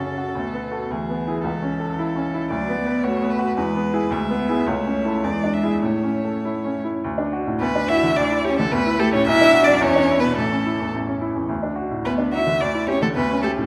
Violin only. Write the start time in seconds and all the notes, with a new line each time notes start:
Already playing: A4
0.91 G#4
1.45 A4
2.51 D5
3.04 C#5
3.31 B4
3.58 B4
4.12 E5
4.67 C#5
5.24 D5
5.54 E5
5.84 C#5
7.60 B4
7.88 E5
8.16 D5
8.44 C#5
8.59 A4
8.72 B4
9.00 A4
9.14 C#5
9.27 E5
9.64 D5
9.82 C#5
10.20 B4
10.38 A4
12.05 B4
12.33 E5
12.61 D5
12.89 C#5
13.02 A4
13.15 B4
13.42 A4